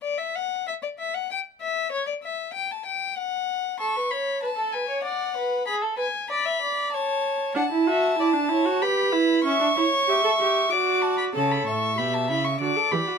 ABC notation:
X:1
M:3/4
L:1/16
Q:1/4=96
K:Amix
V:1 name="Violin"
d e f2 e d e f g2 e2 | c d e2 g a g2 f4 | c'2 b2 a2 ^g2 f4 | b2 ^g2 b4 a4 |
a8 b4 | c'8 d'2 a b | a b c'2 b a b c' d'2 b2 |]
V:2 name="Violin"
z12 | z12 | A B c2 B A B c d2 B2 | ^G A B2 d e d2 c4 |
f2 e2 d2 c2 B4 | e2 c2 e4 d4 | c2 e6 d4 |]
V:3 name="Viola"
z12 | z12 | z12 | z12 |
D E F2 E D E F G2 E2 | C D E2 G A G2 F4 | A4 G2 E2 F A G F |]
V:4 name="Cello" clef=bass
z12 | z12 | z12 | z12 |
z12 | z12 | C,2 A,,2 B,,2 C,2 D,2 E,2 |]